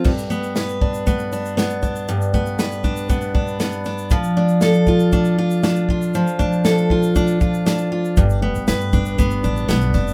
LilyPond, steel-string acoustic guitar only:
\new Staff \with { instrumentName = "Steel-string acoustic guitar" } { \time 4/4 \key g \mixolydian \tempo 4 = 118 g,8 b8 b'8 d'8 b8 d'8 b8 d'8 | g,8 b8 b'8 d'8 b8 d'8 b8 d'8 | f8 d'8 a'8 f'8 d'8 f'8 d'8 f'8 | f8 d'8 a'8 f'8 d'8 f'8 d'8 f'8 |
g,8 b8 b'8 d'8 b8 d'8 b8 d'8 | }